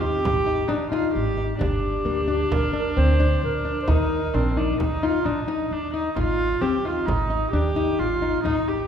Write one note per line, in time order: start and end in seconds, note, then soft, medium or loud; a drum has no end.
0.00 0.16 D#2 medium
0.00 0.33 D#4 medium
0.00 0.69 G4 medium
0.25 0.61 G#1 medium
0.25 frame drum medium
0.46 0.62 D#4 medium
0.68 1.06 D#2 medium
0.68 0.85 D4 medium
0.68 0.90 D#4 medium
0.68 frame drum soft
0.91 1.24 D#4 medium
0.91 1.13 F4 medium
0.91 frame drum soft
1.14 1.51 G#1 medium
1.14 1.57 G4 medium
1.14 frame drum soft
1.37 1.53 D#4 medium
1.37 frame drum soft
1.59 1.97 G1 medium
1.59 1.91 D4 medium
1.59 3.89 D4 medium
1.59 2.53 G4 medium
1.59 frame drum medium
2.05 2.42 D2 medium
2.05 2.21 A#3 medium
2.28 2.60 D4 medium
2.51 2.88 G1 medium
2.51 2.73 A#4 medium
2.51 frame drum medium
2.73 2.89 D4 medium
2.73 2.99 A#4 medium
2.73 frame drum soft
2.97 3.34 D2 medium
2.97 3.13 C4 medium
2.97 3.43 C5 medium
3.20 3.51 D4 medium
3.20 frame drum soft
3.43 3.79 A#1 medium
3.43 3.79 A#4 medium
3.65 3.81 D4 medium
3.82 3.92 C5 soft
3.87 4.25 D#2 medium
3.87 4.35 D#4 medium
3.87 4.20 D#4 medium
3.87 4.81 A#4 medium
3.87 frame drum medium
4.34 4.70 A#1 medium
4.34 4.58 C4 medium
4.34 4.50 D4 medium
4.57 4.80 D4 medium
4.57 4.89 D#4 medium
4.80 5.16 D#2 medium
4.80 5.04 D#4 medium
4.80 frame drum medium
5.02 5.19 D#4 medium
5.02 5.27 F4 medium
5.02 frame drum soft
5.25 5.62 A#1 medium
5.25 5.41 D4 medium
5.25 5.74 D#4 medium
5.48 5.80 D#4 medium
5.48 frame drum soft
5.71 6.07 D#2 medium
5.71 5.94 D4 medium
5.94 6.10 D#4 medium
5.94 6.15 D#4 medium
5.94 frame drum soft
6.16 6.53 G#1 medium
6.16 6.48 D#4 medium
6.16 6.63 F4 medium
6.16 frame drum soft
6.61 6.98 D#2 medium
6.61 6.78 C4 medium
6.61 6.87 G4 medium
6.85 7.17 D#4 medium
6.85 7.07 F4 medium
7.06 7.44 G#1 medium
7.06 7.51 D#4 medium
7.06 frame drum medium
7.30 7.46 D#4 medium
7.30 frame drum soft
7.52 7.90 D#2 medium
7.52 7.69 D4 medium
7.52 8.01 G4 medium
7.76 8.08 D#4 medium
7.76 frame drum soft
7.99 8.36 G#1 medium
7.99 8.43 F4 medium
8.22 8.38 D#4 medium
8.22 frame drum soft
8.44 8.81 G#1 medium
8.44 8.69 D#4 medium
8.44 8.77 D#4 medium
8.44 frame drum soft
8.68 8.87 G4 medium